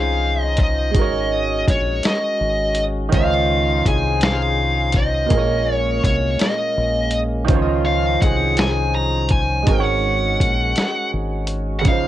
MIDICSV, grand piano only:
0, 0, Header, 1, 2, 480
1, 0, Start_track
1, 0, Key_signature, -5, "major"
1, 0, Tempo, 727273
1, 622, Time_signature, 6, 3, 24, 8
1, 7970, End_track
2, 0, Start_track
2, 0, Title_t, "Grand piano"
2, 0, Program_c, 0, 0
2, 0, Control_c, 0, 64, 127
2, 0, Note_on_c, 0, 51, 75
2, 0, Note_on_c, 0, 61, 63
2, 0, Note_on_c, 0, 63, 65
2, 0, Note_on_c, 0, 65, 64
2, 0, Note_on_c, 0, 72, 73
2, 585, Note_off_c, 0, 51, 0
2, 594, Note_off_c, 0, 61, 0
2, 599, Note_on_c, 0, 56, 70
2, 603, Note_off_c, 0, 63, 0
2, 611, Note_off_c, 0, 65, 0
2, 617, Note_on_c, 0, 63, 60
2, 620, Note_off_c, 0, 72, 0
2, 631, Control_c, 0, 64, 0
2, 634, Note_on_c, 0, 66, 63
2, 654, Note_on_c, 0, 70, 66
2, 669, Note_on_c, 0, 73, 78
2, 739, Control_c, 0, 64, 127
2, 2024, Note_off_c, 0, 56, 0
2, 2033, Note_off_c, 0, 63, 0
2, 2039, Note_on_c, 0, 51, 75
2, 2042, Note_off_c, 0, 66, 0
2, 2052, Note_off_c, 0, 70, 0
2, 2055, Note_on_c, 0, 61, 63
2, 2059, Note_off_c, 0, 73, 0
2, 2069, Control_c, 0, 64, 0
2, 2073, Note_on_c, 0, 65, 66
2, 2091, Note_on_c, 0, 72, 66
2, 2109, Note_on_c, 0, 75, 83
2, 2193, Control_c, 0, 64, 127
2, 3464, Note_off_c, 0, 51, 0
2, 3473, Note_off_c, 0, 61, 0
2, 3473, Note_on_c, 0, 46, 72
2, 3481, Note_off_c, 0, 65, 0
2, 3490, Note_off_c, 0, 72, 0
2, 3490, Note_on_c, 0, 58, 64
2, 3499, Note_off_c, 0, 75, 0
2, 3510, Note_on_c, 0, 68, 70
2, 3511, Control_c, 0, 64, 0
2, 3527, Note_on_c, 0, 70, 67
2, 3547, Note_on_c, 0, 73, 73
2, 3640, Control_c, 0, 64, 127
2, 4901, Note_off_c, 0, 46, 0
2, 4910, Note_off_c, 0, 58, 0
2, 4915, Note_on_c, 0, 51, 89
2, 4920, Note_off_c, 0, 68, 0
2, 4928, Note_off_c, 0, 70, 0
2, 4932, Note_on_c, 0, 61, 77
2, 4938, Note_off_c, 0, 73, 0
2, 4949, Note_on_c, 0, 53, 78
2, 4950, Control_c, 0, 64, 0
2, 4968, Note_on_c, 0, 72, 77
2, 4985, Note_on_c, 0, 73, 74
2, 5007, Note_off_c, 0, 73, 0
2, 5030, Note_on_c, 0, 75, 90
2, 5074, Control_c, 0, 64, 127
2, 6342, Note_off_c, 0, 51, 0
2, 6351, Note_off_c, 0, 61, 0
2, 6353, Note_on_c, 0, 56, 70
2, 6360, Note_off_c, 0, 53, 0
2, 6369, Note_off_c, 0, 72, 0
2, 6372, Note_on_c, 0, 63, 70
2, 6388, Note_on_c, 0, 66, 62
2, 6392, Control_c, 0, 64, 0
2, 6400, Note_off_c, 0, 75, 0
2, 6407, Note_on_c, 0, 70, 63
2, 6425, Note_on_c, 0, 72, 62
2, 6447, Note_off_c, 0, 72, 0
2, 6468, Note_on_c, 0, 73, 85
2, 6489, Control_c, 0, 64, 127
2, 7781, Note_off_c, 0, 56, 0
2, 7791, Note_off_c, 0, 63, 0
2, 7796, Note_on_c, 0, 49, 76
2, 7799, Note_off_c, 0, 66, 0
2, 7808, Note_off_c, 0, 70, 0
2, 7815, Note_on_c, 0, 61, 65
2, 7832, Control_c, 0, 64, 0
2, 7832, Note_on_c, 0, 63, 64
2, 7839, Note_off_c, 0, 73, 0
2, 7848, Note_on_c, 0, 53, 67
2, 7865, Note_on_c, 0, 72, 79
2, 7928, Control_c, 0, 64, 127
2, 7970, Note_off_c, 0, 49, 0
2, 7970, Note_off_c, 0, 53, 0
2, 7970, Note_off_c, 0, 61, 0
2, 7970, Note_off_c, 0, 63, 0
2, 7970, Note_off_c, 0, 72, 0
2, 7970, End_track
0, 0, End_of_file